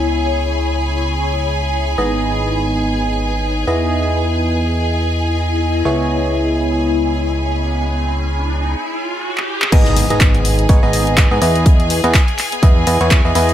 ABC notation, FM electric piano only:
X:1
M:4/4
L:1/16
Q:"Swing 16ths" 1/4=124
K:C#m
V:1 name="FM electric piano"
[B,EGc]16 | [B,DGd]12- [B,DGd]2 [B,EGd]2- | [B,EGd]16 | [B,EGc]16- |
[B,EGc]8 z8 | [B,DGd]3 [B,DGd]4- [B,DGd] [B,DGc] [B,DGd]4 [B,DGd] [B,EGd]2- | [B,EGd]3 [B,EGd] z4 [B,EGd]2 [B,EGd] [B,EGc]2 [B,EGd] [B,EGd]2 |]